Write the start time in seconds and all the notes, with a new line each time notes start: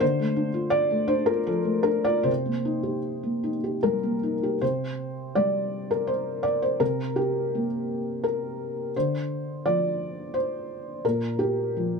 0.00 D3 C5
0.20 A3
0.36 D4
0.54 F4
0.70 D5
0.91 A3
1.08 D4 C5
1.26 F4 A#4
1.47 F3 A4
1.65 A3
1.83 D4 A#4
2.04 F4 D5
2.23 C3 C5
2.46 A#3
2.65 D#4
2.83 G4
3.23 A#3
3.44 D#4
3.64 G4
3.83 G3 A#4
4.03 A#3
4.23 D#4
4.43 G4
4.61 C3 C5
5.35 G3 D5
5.91 A#4
6.07 C5
6.43 D5
6.62 C5
6.80 C3 A#4
7.16 G4
7.55 A#3
8.24 A#4
8.96 D3 C5
9.65 F3 D5
10.34 C5
11.05 A#2 A#4
11.39 G4
11.77 F3